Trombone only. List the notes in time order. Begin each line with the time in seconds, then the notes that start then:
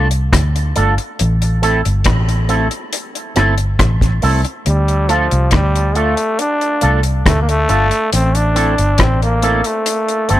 4.67 G3
5.11 F3
5.54 G3
5.96 A3
6.40 D4
7.27 A3
7.42 A#3
7.49 A3
8.13 C4
8.36 D4
9.00 C4
9.23 A#3
9.66 A3
10.31 C4